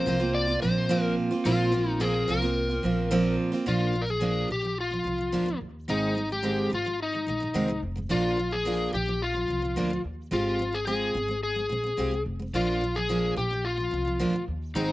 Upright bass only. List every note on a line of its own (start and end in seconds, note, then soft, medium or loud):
0.07 0.58 C2 medium
0.62 1.14 A#1 medium
1.45 2.24 A#1 loud
2.29 2.80 C2 medium
2.84 3.35 A#1 medium
3.67 4.46 A#1 loud
4.50 5.01 A#1 medium
5.05 5.31 C2 medium
5.33 5.58 D2 medium
5.61 5.86 D#2 medium
5.88 6.67 G#1 medium
6.72 7.23 G#1 medium
7.27 7.52 A#1 medium
7.55 7.80 C2 medium
7.83 8.08 F1 medium
8.11 8.89 A#1 medium
8.94 9.45 A#1 medium
9.49 9.74 C2 medium
9.76 10.02 D2 medium
10.04 10.30 D#2 medium
10.32 11.11 G#1 medium
11.15 11.66 G#1 medium
11.70 11.95 A#1 medium
11.98 12.23 C2 medium
12.26 12.51 F1 medium
12.53 13.32 A#1 medium
13.37 13.88 A#1 medium
13.92 14.18 C2 medium
14.20 14.45 D2 medium
14.48 14.73 D#2 medium
14.75 14.92 G#1 medium